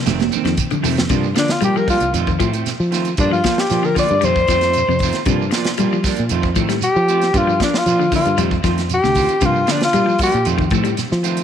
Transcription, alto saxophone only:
1.38 D4
1.52 F4
1.64 G4
1.78 A#4
1.90 F4
3.20 D4
3.33 F4
3.60 G4
3.85 A#4
3.99 D5
4.25 C5
6.84 G4
7.37 F4
7.63 D4
7.78 F4
8.16 F4
8.94 G4
9.45 F4
9.72 D4
9.85 F4
10.23 G4

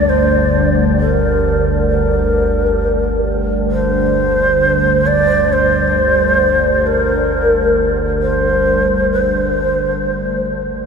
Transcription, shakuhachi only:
Already playing: D5
0.09 C5
0.99 A#4
1.88 A#4
3.70 C5
5.06 D5
5.52 C5
6.86 A#4
8.21 C5
9.12 C5

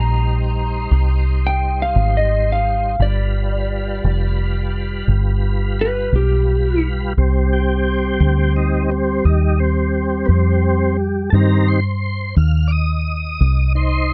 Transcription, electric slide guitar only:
Already playing: A#5
1.47 G5
1.82 F5
2.17 D#5
2.52 F5
3.02 D5
5.81 B4
6.16 G4

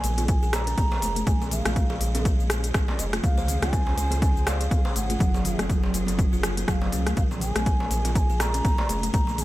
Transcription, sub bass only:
0.04 A#1
0.43 A#1
0.78 A#1
1.02 F1
1.27 A#1
1.66 A#1
2.01 A#1
2.39 A#1
2.74 A#1
2.99 F1
3.24 C#2
3.62 C#2
3.97 C#2
4.36 C#2
4.71 C#2
4.96 G#1
5.20 F#1
5.59 F#1
5.94 F#1
6.33 F#1
6.68 F#1
6.92 C#2
7.17 A#1
7.56 A#1
7.91 A#1
8.30 A#1
8.65 A#1
8.89 F1
9.14 A#1

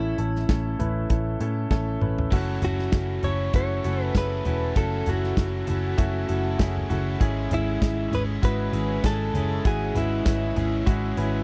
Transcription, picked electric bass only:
Already playing: A1
0.18 A1
0.49 A1
0.80 A1
1.10 A1
1.41 A2
1.71 A1
2.02 A1
2.32 F#1
2.62 F#1
2.93 F#1
3.23 F#1
3.54 F#1
3.85 F#1
4.15 F#1
4.46 E1
4.76 F#1
5.07 F#1
5.37 F#1
5.68 F#1
5.99 F#1
6.30 F#1
6.60 F#1
6.91 F#1
7.21 G#1
7.51 G#1
7.82 G#1
8.12 G#1
8.43 G#1
8.73 G#1
9.04 G#1
9.34 F#1
9.65 G#1
9.95 G#1
10.26 G#1
10.56 G#1
10.87 G#1
11.17 G#1

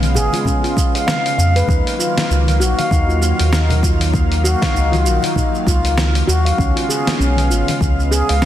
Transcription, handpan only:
0.15 G#4
0.33 F4
0.46 C#4
0.64 F4
0.95 F5
1.07 F5
1.38 F5
1.56 B4
1.68 D#4
1.99 F4
2.60 F#4
2.78 F5
2.91 D#4
3.09 F4
3.21 F#4
3.53 D#4
3.83 F4
4.44 F#4
4.62 F5
4.74 D#4
4.92 F4
5.05 F#4
5.36 D#4
5.67 F4
6.28 F#4
6.45 F5
6.58 C#4
6.76 F4
6.89 G#4
7.19 C#4
7.50 F4
8.11 G#4
8.29 F5
8.42 C#4

